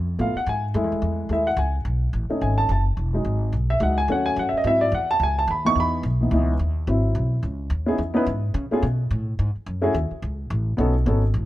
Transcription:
Already playing: F2
0.19 A2 A3 B3 F4 F5
0.35 F#5, muted upright bass stroke
0.46 G#2 G#5
0.74 F#2 G#3 A3 E4
0.83 E2
0.92 C#2
1.02 E2
1.29 D#2 G#3 A3 E4 E5
1.47 F#5
1.57 C#2 G#5
1.85 B1
2.13 A1
2.30 A3 C#4 D#4, muted upright bass stroke
2.41 G#1 G#5
2.58 A5
2.69 F#1 A5
2.97 E1
3.13 F#3 G#3 D#4
3.25 G#1
3.53 B1
3.70 E5
3.80 C#2 F#3 G#3 D#4 F#5
3.98 G#5
4.08 D#2 F#3 A3 C#4 F#5
4.26 G#5
4.36 F#2 F#5
4.49 E5, muted upright bass stroke
4.57 D#5
4.64 G#2 F#3 C4 E4 E5
4.81 D5
4.92 E2 F#5
5.11 A5
5.20 C#2 G#5
5.39 A5
5.47 D#2 B5
5.65 E3 B3 D#4 C#6
5.75 E2
5.80 B5
6.03 B1
6.21 E3 B3 D#4
6.31 C#2 E3 B3 D#4
6.59 D#2
6.87 G#1 F#3 C4 E4
7.15 B1
7.43 C#2
7.70 D#2
7.86 B3 C#4 D#4 E4 G#4
7.98 E2
8.14 B3 C#4 D#4 E4 B4
8.27 G#2
8.54 C#3
8.71 A3 B3 C#4 F4 G#4, muted upright bass stroke
8.82 B2
9.11 A2
9.39 G#2
9.56 muted upright bass stroke
9.66 F#2
9.82 A3 C#4 E4 F#4 G#4
9.94 D#2
10.11 muted upright bass stroke
10.22 C#2
10.50 A1
10.77 B1 B3 C#4 D#4 F#4 A4
11.06 G#1 B3 C#4 D#4 F#4 A4
11.34 A1

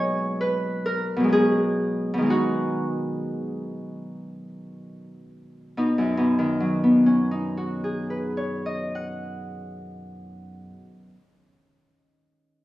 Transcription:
Already playing: B2 F#3 G#3 C#4 D#4 B4 C#5 D#5
0.41 B4
0.86 A#4
1.17 B2 F#3
1.24 G#3
1.29 C#4 G#4
2.13 B2
2.17 D#3
2.22 G#3 D#4
2.30 F#4
5.77 B2 D#4
5.98 F#2
6.17 B2
6.39 D#3
6.60 F#3
6.84 B3
7.06 C#4
7.31 D#4
7.58 F#4
7.84 G#4
8.10 B4
8.37 C#5
8.66 D#5
8.95 F#5

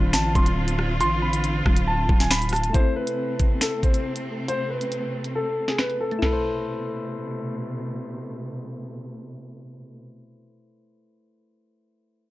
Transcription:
Already playing: D1 D3 C4 D4 F4 C5
0.13 A1 A5, finger snap, snare, closed hi-hat
0.35 D1 C6, kick, closed hi-hat
0.46 closed hi-hat
0.68 closed hi-hat
0.79 cross-stick
1.01 A1 C6, closed hi-hat
1.22 B5
1.33 closed hi-hat
1.44 closed hi-hat
1.66 D1, kick, cross-stick
1.77 closed hi-hat
1.87 A5
2.09 D1, kick
2.20 G#5, snare
2.31 B5, finger snap, snare
2.42 closed hi-hat
2.49 A5, cross-stick, closed hi-hat, open hi-hat
2.56 closed hi-hat
2.64 closed hi-hat
2.69 A3 E4
2.74 C3 A3 C4 A4 C5, kick, closed hi-hat
2.80 C4
2.96 B4
3.07 closed hi-hat
3.40 kick, closed hi-hat
3.61 A4, finger snap, snare, closed hi-hat
3.83 C5, kick, closed hi-hat
3.94 closed hi-hat
4.16 closed hi-hat
4.48 C5, closed hi-hat
4.70 B4
4.81 closed hi-hat
4.92 closed hi-hat
5.24 closed hi-hat
5.35 A4
5.68 G#4, snare
5.78 B4, finger snap, snare
5.90 closed hi-hat
6.01 A4
6.11 A3, closed hi-hat
6.19 B2 C3 A3 E4 A4, snare, floor tom, crash
6.26 B4
6.33 C5

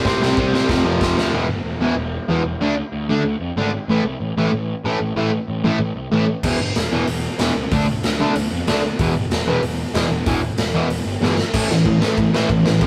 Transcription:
0.05 C2 C3 G3 C4, kick, snare
0.21 C2 C3 G3 C4, snare
0.37 C2 C3 G3 C4, kick
0.52 C2 C3 G3 C4, snare
0.69 F1 F2 C3 F3, kick, snare
0.84 F1 F2 C3 F3
1.00 F1 F2 C3 F3, kick, snare
1.16 D2 F2 C3 F3, snare
1.32 E1 E2 B2 E3
1.48 G1
1.64 E1
1.79 E1 E2 B2 E3
1.96 E1
2.29 E1 E2 B2 E3
2.45 E1
2.60 D2 D3 A3 D4
2.92 D2
3.09 D3 A3 D4
3.24 D2
3.40 F2
3.56 G#1 D3 A3 D4
3.88 A1 A2 E3 A3
4.03 C2
4.20 A1
4.37 A1 A2 E3 A3
4.52 A1
4.84 A1 A2 E3 A3
5.01 A1
5.16 A1 A2 E3 A3
5.48 A1
5.64 A2 E3 A3
5.79 A1
5.96 C2
6.11 A1 A2 E3 A3
6.43 E1 E2 B2 E3, kick, crash
6.59 G1
6.75 E1, snare, open hi-hat
6.91 E1 E2 B2 E3
7.06 E1, open hi-hat
7.39 E1 E2 B2 E3, snare, open hi-hat
7.55 C#2
7.71 D2 D3 A3 D4, kick, open hi-hat
8.03 D2, snare, open hi-hat
8.20 D3 A3 D4
8.35 D2, open hi-hat
8.51 F2
8.67 D2 D3 A3 D4, snare, open hi-hat
8.99 E1 E2 B2 E3, kick, open hi-hat
9.14 G1
9.30 E1, snare, open hi-hat
9.46 E1 E2 B2 E3
9.62 E1, open hi-hat
9.93 E1 E2 B2 E3, snare, open hi-hat
10.10 E1
10.26 E1 E2 B2 E3, kick, open hi-hat
10.57 E1, snare, open hi-hat
10.74 E2 B2 E3
10.89 E1, open hi-hat
11.05 G1
11.21 G1 E2 B2 E3, snare
11.38 snare
11.54 A1 A2 E3 A3, kick, crash
11.69 A1 A2 E3, snare
11.85 A1 A2 E3, kick, ride
12.01 A1 A2 E3 A3, snare
12.17 A1 A2 E3, kick, ride
12.34 A2 E3 A3, snare
12.49 A1 A2 E3, kick, ride
12.65 A2 E3, snare
12.80 F1 F2 C3 F3, kick, ride

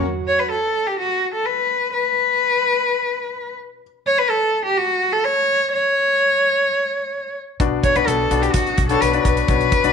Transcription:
Already playing: F#3 F#4
0.28 C#5
0.39 B4
0.51 A4
0.87 G4
0.99 F#4
1.34 A4
1.46 B4
1.93 B4
4.07 C#5
4.18 B4
4.30 A4
4.65 G4
4.77 F#4
5.13 A4
5.25 C#5
5.72 C#5
7.60 B1 B2 D4 F#4 B4 D5, kick, closed hi-hat
7.84 C#5, kick, closed hi-hat
7.95 B1 D4 F#4 B4 D5, closed hi-hat
8.07 B1 A4, closed hi-hat
8.31 B1 D4 F#4 B4 D5, closed hi-hat
8.42 G4, closed hi-hat
8.54 B1 F#4, kick, closed hi-hat
8.67 closed hi-hat
8.78 B1, kick, closed hi-hat
8.89 D4 F#4 A4 B4 C#5, closed hi-hat
9.01 B1 B4, closed hi-hat
9.13 D4 F#4 B4 D5, closed hi-hat
9.25 B1 B4, kick, closed hi-hat
9.37 closed hi-hat
9.48 B1 B2 D4 F#4 B4 C#5, kick, closed hi-hat
9.61 closed hi-hat
9.72 kick, closed hi-hat
9.84 B1 D4 F#4 B4 D5, closed hi-hat

